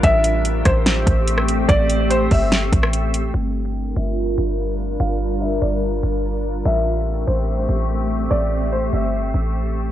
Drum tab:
HH |x-x-x-x-x-x-x-x-|x-x-x-o-x-x-x-x-|----------------|----------------|
SD |------r-o----r--|--------o--r----|----------------|----------------|
BD |o-----o---o-----|o-----o---o-----|----------------|----------------|

HH |----------------|----------------|
SD |----------------|----------------|
BD |----------------|----------------|